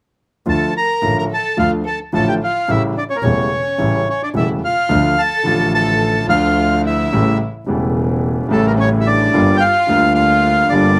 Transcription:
0.46 0.69 D2 soft
0.46 0.70 D2 medium
0.46 0.70 D3 medium
0.46 0.70 F3 soft
0.46 0.70 A3 soft
0.46 0.70 F4 soft
0.46 0.74 A5 medium
0.51 0.75 A4 soft
0.77 1.15 A#4 soft
0.77 1.17 A#5 medium
1.02 1.26 A1 soft
1.02 1.26 A1 medium
1.02 1.25 A2 soft
1.02 1.26 D3 soft
1.02 1.26 F3 soft
1.02 1.26 A3 soft
1.02 1.26 F4 soft
1.18 1.24 A#4 medium
1.18 1.24 A#5 medium
1.32 1.57 A4 soft
1.32 1.58 A5 medium
1.57 1.81 D2 medium
1.57 1.81 D3 soft
1.57 1.81 F3 soft
1.57 1.81 A3 soft
1.57 1.81 F4 soft
1.57 1.72 F4 soft
1.57 1.71 F5 medium
1.87 1.99 A4 soft
1.87 1.99 A5 medium
2.13 2.37 A1 medium
2.13 2.36 A2 medium
2.13 2.36 D3 soft
2.13 2.36 F3 soft
2.13 2.36 A3 soft
2.13 2.36 F4 medium
2.13 2.27 A4 medium
2.13 2.28 A5 medium
2.27 2.33 G4 soft
2.27 2.34 G5 medium
2.41 2.67 F4 soft
2.41 2.71 F5 medium
2.68 2.92 A1 medium
2.68 2.92 A2 medium
2.68 2.92 C#3 soft
2.68 2.92 G3 soft
2.68 2.92 A3 soft
2.68 2.92 E4 medium
2.68 2.82 E4 soft
2.68 2.83 E5 medium
2.97 3.03 D4 soft
2.97 3.04 D5 medium
3.10 3.17 C#4 soft
3.10 3.17 C#5 medium
3.16 3.23 A#3 soft
3.16 3.24 A#4 soft
3.22 3.47 E1 medium
3.22 3.48 E1 medium
3.22 3.48 E2 medium
3.22 3.48 C#3 soft
3.22 3.48 G3 soft
3.22 3.48 A3 soft
3.22 4.07 C#4 soft
3.22 3.48 E4 soft
3.22 4.08 C#5 soft
3.78 4.03 A1 medium
3.78 4.03 A2 medium
3.78 4.02 C#3 soft
3.78 4.03 G3 soft
3.78 4.02 A3 soft
3.78 4.03 E4 soft
4.09 4.21 C#4 soft
4.09 4.22 C#5 soft
4.23 4.29 D4 soft
4.23 4.29 D5 soft
4.34 4.58 E1 soft
4.34 4.59 E1 medium
4.34 4.59 E2 soft
4.34 4.58 C#3 soft
4.34 4.58 G3 soft
4.34 4.58 A3 soft
4.34 4.58 E4 soft
4.34 4.49 E5 soft
4.39 4.51 E4 soft
4.64 5.16 F4 soft
4.64 5.21 F5 medium
4.89 5.14 D2 medium
4.89 5.15 D2 medium
4.89 5.14 D3 medium
4.89 5.14 F3 soft
4.89 5.14 A3 soft
4.89 5.14 F4 medium
5.19 5.71 A4 medium
5.19 5.73 A5 medium
5.43 6.25 A1 medium
5.43 6.26 A1 medium
5.43 6.25 A2 medium
5.43 6.24 D3 soft
5.43 6.25 F3 soft
5.43 6.26 A3 soft
5.43 6.26 F4 medium
5.74 6.26 A4 medium
5.74 6.26 A5 medium
6.29 7.09 D2 medium
6.29 7.09 D3 medium
6.29 7.09 F3 soft
6.29 7.09 A3 soft
6.29 6.81 F4 medium
6.29 7.10 F4 medium
6.29 6.81 F5 medium
6.84 7.37 E4 soft
6.84 7.38 E5 medium
7.13 7.36 A1 medium
7.13 7.37 A1 medium
7.13 7.36 A2 medium
7.13 7.37 C#3 medium
7.13 7.37 G3 medium
7.13 7.37 A3 soft
7.13 7.37 E4 medium
7.67 8.47 E1 medium
7.67 8.48 E2 medium
7.67 8.47 C#3 soft
7.67 8.47 G3 soft
7.67 8.48 A3 soft
7.67 8.48 E4 medium
8.49 9.30 A1 medium
8.49 9.31 A1 medium
8.49 9.30 A2 medium
8.49 9.29 C#3 medium
8.49 9.30 G3 medium
8.49 9.31 A3 medium
8.49 8.65 A3 soft
8.49 9.31 E4 medium
8.49 8.66 A4 medium
8.67 8.73 A#3 medium
8.67 8.73 A#4 medium
8.77 8.87 C#4 medium
8.77 8.89 C#5 medium
9.01 9.07 E4 soft
9.01 9.08 E5 soft
9.07 9.52 D4 medium
9.07 9.57 D5 medium
9.34 9.58 G1 medium
9.34 9.58 G2 medium
9.34 9.58 D3 medium
9.34 9.58 G3 medium
9.34 9.58 A#3 medium
9.34 9.58 F4 medium
9.55 10.12 F4 medium
9.55 9.62 G4 soft
9.55 9.63 G5 medium
9.60 10.13 F5 medium
9.87 10.68 D2 medium
9.87 10.69 D2 medium
9.87 9.88 D3 medium
9.87 10.68 D3 medium
9.87 10.68 G3 soft
9.87 10.68 A#3 soft
9.87 10.69 F4 medium
10.14 10.67 F4 medium
10.14 10.73 F5 medium
10.70 11.00 G1 medium
10.70 11.00 G2 medium
10.70 11.00 D3 medium
10.70 11.00 G3 soft
10.70 11.00 A#3 soft
10.70 11.00 D4 medium
10.70 11.00 D5 medium
10.75 11.00 F4 medium

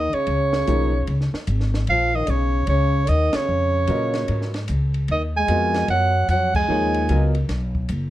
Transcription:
0.00 0.11 D#2 medium
0.00 0.16 D#3 medium
0.00 0.16 D#5 medium
0.13 1.34 C#3 medium
0.13 1.34 C#5 medium
0.13 muted upright bass stroke soft
0.13 ride soft
0.27 0.66 C#2 medium
0.27 ride medium
0.53 snare medium
0.67 1.07 B1 medium
0.67 0.91 F3 medium
0.67 0.91 A#3 medium
0.67 0.91 D#4 medium
0.67 0.91 G#4 medium
0.67 0.91 C#5 medium
0.67 hi-hat pedal medium
0.67 ride medium
1.07 1.32 C#2 medium
1.07 ride medium
1.21 snare soft
1.33 muted upright bass stroke soft
1.33 snare soft
1.47 1.87 G#1 medium
1.47 hi-hat pedal medium
1.47 ride medium
1.60 snare soft
1.74 snare soft
1.87 2.27 A#1 medium
1.87 2.16 F3 medium
1.87 2.17 F5 loud
1.87 ride medium
2.15 2.30 D#3 medium
2.15 2.32 D#5 medium
2.27 2.67 B1 medium
2.27 2.68 C#3 medium
2.27 2.68 C#5 medium
2.27 hi-hat pedal soft
2.27 ride medium
2.67 3.07 C#2 medium
2.67 3.09 C#3 medium
2.67 3.11 C#5 loud
2.67 ride medium
3.07 3.33 D#2 medium
3.07 3.36 D#3 medium
3.07 3.37 D#5 medium
3.07 hi-hat pedal medium
3.07 ride medium
3.33 4.54 C#3 medium
3.33 4.55 C#5 medium
3.33 muted upright bass stroke soft
3.33 snare medium
3.33 ride medium
3.49 3.87 F2 medium
3.87 4.27 A#2 medium
3.87 4.49 F#3 medium
3.87 4.49 F4 medium
3.87 4.50 A#4 medium
3.87 4.49 B4 medium
3.87 4.50 D#5 medium
3.87 hi-hat pedal medium
3.87 ride medium
4.14 snare soft
4.14 ride soft
4.28 4.67 G#2 medium
4.28 ride medium
4.42 snare soft
4.54 snare soft
4.54 ride soft
4.68 5.08 C#2 medium
4.68 hi-hat pedal medium
4.68 ride medium
4.94 ride soft
5.08 5.48 D#2 medium
5.08 5.22 D#3 medium
5.08 5.23 D#5 medium
5.08 ride medium
5.37 5.87 G#3 medium
5.37 5.86 G#5 loud
5.48 5.87 F2 medium
5.48 6.09 B3 medium
5.48 6.10 F4 medium
5.48 6.09 F#4 medium
5.48 6.10 A#4 medium
5.48 6.10 D#5 medium
5.48 hi-hat pedal soft
5.48 ride medium
5.74 snare soft
5.74 ride soft
5.88 6.27 F#2 medium
5.88 6.27 F#3 medium
5.88 6.27 F#5 medium
5.88 ride medium
6.28 6.67 F2 medium
6.28 6.54 F#3 medium
6.28 6.54 F#5 medium
6.28 hi-hat pedal medium
6.28 ride medium
6.54 7.32 G#3 medium
6.54 7.32 G#5 medium
6.54 kick medium
6.54 crash medium
6.68 7.08 D#2 medium
6.68 7.07 F3 medium
6.68 7.08 A#3 medium
6.68 7.08 D#4 medium
6.68 7.08 G#4 medium
6.68 7.08 C#5 medium
6.94 ride soft
7.09 7.48 C#2 medium
7.09 7.32 F#3 medium
7.09 7.33 B3 medium
7.09 7.33 F4 medium
7.09 7.33 A#4 medium
7.09 7.33 D#5 medium
7.09 hi-hat pedal medium
7.09 ride medium
7.35 ride soft
7.49 7.88 B1 medium
7.49 snare soft
7.49 ride medium
7.75 kick medium
7.89 8.10 F#1 medium
7.89 hi-hat pedal medium
7.89 ride medium

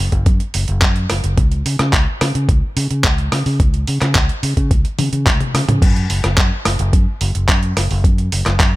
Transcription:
0.00 0.10 F#1 loud
0.12 0.24 F#1 loud
0.12 kick medium
0.12 closed hi-hat medium
0.26 0.38 F#2 medium
0.26 kick loud
0.26 closed hi-hat medium
0.40 closed hi-hat soft
0.54 0.66 F#1 loud
0.54 open hi-hat loud
0.68 0.80 F#1 medium
0.68 closed hi-hat medium
0.82 1.06 F#2 medium
0.82 kick loud
0.82 clap loud
0.82 closed hi-hat medium
0.96 closed hi-hat soft
1.10 1.22 F#1 medium
1.10 cross-stick medium
1.10 open hi-hat loud
1.24 1.36 F#1 medium
1.24 closed hi-hat medium
1.38 1.61 C#2 loud
1.38 kick loud
1.38 closed hi-hat medium
1.51 closed hi-hat soft
1.66 1.77 C#3 medium
1.66 open hi-hat loud
1.79 1.91 C#3 loud
1.79 cross-stick medium
1.79 closed hi-hat medium
1.93 2.05 C#2 loud
1.93 kick loud
1.93 clap loud
1.93 closed hi-hat medium
2.21 2.33 C#3 loud
2.21 cross-stick medium
2.21 open hi-hat loud
2.35 2.47 C#3 loud
2.35 closed hi-hat medium
2.49 2.60 C#2 medium
2.49 kick loud
2.49 closed hi-hat medium
2.77 2.88 C#3 loud
2.77 open hi-hat loud
2.91 3.02 C#3 medium
2.91 closed hi-hat medium
3.04 3.28 C#2 medium
3.04 kick loud
3.04 clap loud
3.04 closed hi-hat medium
3.18 closed hi-hat soft
3.32 3.44 C#3 medium
3.32 cross-stick medium
3.32 open hi-hat loud
3.46 3.58 C#3 medium
3.46 open hi-hat medium
3.60 3.83 C#2 medium
3.60 kick loud
3.60 closed hi-hat medium
3.74 closed hi-hat soft
3.87 4.00 C#3 medium
3.87 open hi-hat loud
4.01 4.13 C#3 loud
4.01 cross-stick medium
4.01 clap soft
4.01 closed hi-hat medium
4.15 4.27 C#2 loud
4.15 kick loud
4.15 clap loud
4.15 closed hi-hat medium
4.29 closed hi-hat soft
4.43 4.55 C#3 loud
4.43 open hi-hat loud
4.57 4.69 C#3 loud
4.57 kick medium
4.57 closed hi-hat medium
4.71 4.83 C#2 medium
4.71 kick loud
4.71 closed hi-hat medium
4.85 closed hi-hat soft
4.99 5.11 C#3 loud
4.99 open hi-hat loud
4.99 high tom medium
5.13 5.28 C#3 medium
5.13 closed hi-hat medium
5.26 5.38 C#2 medium
5.26 kick loud
5.26 clap loud
5.26 closed hi-hat medium
5.26 mid tom medium
5.40 closed hi-hat soft
5.40 mid tom medium
5.54 5.66 C#3 loud
5.54 cross-stick medium
5.54 open hi-hat loud
5.68 5.80 C#3 medium
5.68 closed hi-hat medium
5.68 mid tom medium
5.82 6.06 F#2 medium
5.82 kick loud
5.82 closed hi-hat medium
5.82 crash medium
5.96 closed hi-hat soft
6.10 6.22 F#1 medium
6.10 open hi-hat loud
6.24 6.36 F#1 loud
6.24 cross-stick medium
6.24 closed hi-hat medium
6.38 6.49 F#2 loud
6.38 kick loud
6.38 clap loud
6.38 closed hi-hat medium
6.65 6.77 F#1 loud
6.65 cross-stick medium
6.65 open hi-hat loud
6.79 6.91 F#1 loud
6.79 closed hi-hat medium
6.93 7.05 F#2 medium
6.93 kick loud
6.93 closed hi-hat medium
7.21 7.33 F#1 loud
7.21 open hi-hat loud
7.35 7.47 F#1 medium
7.35 closed hi-hat medium
7.49 7.72 F#2 medium
7.49 kick loud
7.49 clap loud
7.49 closed hi-hat medium
7.63 closed hi-hat soft
7.77 7.88 F#1 medium
7.77 cross-stick medium
7.77 open hi-hat loud
7.91 8.02 F#1 medium
7.91 open hi-hat medium
8.04 8.28 F#2 loud
8.04 kick loud
8.04 closed hi-hat medium
8.18 closed hi-hat soft
8.32 8.44 F#1 medium
8.32 open hi-hat loud
8.46 8.58 F#1 loud
8.46 cross-stick medium
8.46 clap soft
8.46 closed hi-hat medium
8.60 8.72 F#2 loud
8.60 kick loud
8.60 clap loud
8.60 closed hi-hat medium

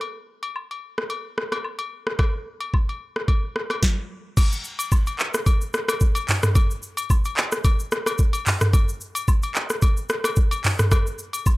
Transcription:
0.01 high agogo medium
0.43 high agogo medium
0.56 low woodblock medium
0.71 high agogo medium
0.98 cross-stick medium
1.10 high agogo medium
1.38 cross-stick medium
1.52 cross-stick medium
1.52 high agogo medium
1.64 low woodblock medium
1.79 high agogo medium
2.07 cross-stick medium
2.19 kick loud
2.19 cross-stick loud
2.19 high agogo medium
2.60 high agogo medium
2.74 kick medium
2.74 low woodblock medium
2.89 high agogo medium
3.16 cross-stick medium
3.28 kick loud
3.28 high agogo medium
3.56 cross-stick medium
3.70 cross-stick medium
3.70 high agogo medium
3.83 kick loud
3.83 snare medium
4.37 kick loud
4.37 crash loud
4.37 high agogo medium
4.37 shaker medium
4.52 shaker medium
4.64 shaker medium
4.79 high agogo medium
4.79 shaker loud
4.92 kick medium
4.92 low woodblock medium
4.92 shaker medium
5.07 high agogo medium
5.07 shaker medium
5.19 clap medium
5.19 shaker soft
5.34 cross-stick loud
5.34 shaker medium
5.46 kick loud
5.46 high agogo medium
5.46 shaker medium
5.61 shaker medium
5.74 cross-stick loud
5.74 shaker medium
5.88 cross-stick loud
5.88 high agogo medium
5.88 shaker medium
6.00 kick medium
6.00 shaker medium
6.15 high agogo medium
6.15 shaker medium
6.28 clap loud
6.28 mid tom medium
6.28 open hi-hat medium
6.28 shaker soft
6.43 cross-stick loud
6.43 mid tom medium
6.43 shaker medium
6.55 kick loud
6.55 high agogo medium
6.55 shaker medium
6.71 shaker medium
6.82 shaker medium
6.97 high agogo medium
6.97 shaker loud
7.10 kick medium
7.10 low woodblock medium
7.10 shaker medium
7.25 high agogo medium
7.25 shaker medium
7.37 clap medium
7.37 shaker soft
7.52 cross-stick medium
7.52 shaker medium
7.64 kick loud
7.64 high agogo medium
7.64 shaker medium
7.79 shaker medium
7.92 cross-stick loud
7.92 shaker medium
8.06 cross-stick medium
8.06 high agogo medium
8.06 shaker medium
8.18 kick medium
8.18 shaker medium
8.33 high agogo medium
8.33 shaker medium
8.46 clap loud
8.46 mid tom medium
8.46 open hi-hat medium
8.46 shaker medium
8.61 cross-stick loud
8.61 mid tom loud
8.61 shaker medium
8.73 kick loud
8.73 high agogo medium
8.73 shaker medium
8.89 shaker medium
9.01 shaker medium
9.15 high agogo medium
9.15 shaker loud
9.28 kick medium
9.28 low woodblock medium
9.28 shaker medium
9.43 high agogo medium
9.43 shaker medium
9.55 clap medium
9.55 shaker soft
9.70 cross-stick medium
9.70 shaker medium
9.82 kick loud
9.82 high agogo medium
9.82 shaker medium
9.97 shaker medium
10.09 cross-stick loud
10.09 shaker medium
10.24 cross-stick loud
10.24 high agogo medium
10.24 shaker medium
10.36 kick medium
10.36 shaker medium
10.51 high agogo loud
10.51 shaker medium
10.64 clap loud
10.64 mid tom medium
10.64 open hi-hat medium
10.64 shaker soft
10.79 cross-stick loud
10.79 mid tom loud
10.79 shaker medium
10.91 kick loud
10.91 cross-stick loud
10.91 high agogo medium
10.91 shaker medium
11.07 shaker medium
11.19 shaker medium
11.33 high agogo medium
11.33 shaker loud
11.46 kick medium
11.46 low woodblock medium
11.46 shaker medium

